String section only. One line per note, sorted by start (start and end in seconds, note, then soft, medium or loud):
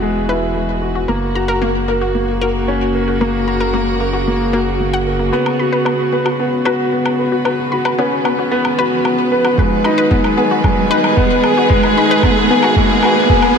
0.00 1.09 E3 medium
0.00 1.08 G#3 medium
0.00 11.28 F#4 medium
0.00 1.08 B4 medium
1.09 9.58 C#3 medium
1.62 5.33 A#3 medium
3.00 5.33 A#4 medium
5.48 13.58 B3 medium
7.14 13.58 B4 medium
9.59 13.58 D#3 medium
10.77 13.58 G#4 medium